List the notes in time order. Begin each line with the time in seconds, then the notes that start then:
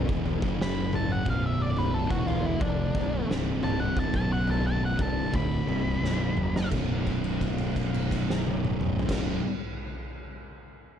0.08 E1 E2 B2 E3, kick
0.26 floor tom
0.42 F#1 F#2 C#3 F#3, kick
0.61 B5, snare
0.93 A5, floor tom, mid tom
1.10 F#5, mid tom
1.26 B0 B1 F#2 B2 F5, kick, floor tom
1.46 E5
1.62 D5
1.77 B4, floor tom
1.94 A4
2.10 E1 E2 B2 E3 F#4, kick
2.27 F4, floor tom
2.46 E4
2.61 F1 F2 C3 F3 D4, kick, floor tom
2.95 B0 B1 F#2 B2, kick, floor tom
3.29 C1 C2 G2 C3, snare
3.63 A5, floor tom, mid tom
3.80 F#5, mid tom
3.97 A5, kick, floor tom
4.14 B0 B1 F#2 B2 A5, kick
4.33 F#5
4.48 A5, floor tom
4.67 A5
4.85 F#5
4.99 C1 C2 G2 C3 A5, kick, floor tom
5.33 D1 D2 A2 D3 B5, kick, floor tom
5.66 C1 C2 G2 C3, floor tom
6.01 B0 B1 F#2 B2
6.05 snare
6.36 F#1 F#2 C#3 F#3, mid tom
6.56 snare
6.72 B0 B1 F#2, kick, crash
6.76 B2
7.07 kick, crash
7.24 crash
7.41 kick, crash
7.58 crash
7.76 kick, crash
7.94 crash
8.11 kick, crash
8.30 snare
8.47 high tom
8.65 mid tom
8.81 mid tom
8.99 floor tom
9.07 B0 B1 F#2, kick, snare, crash
9.11 B2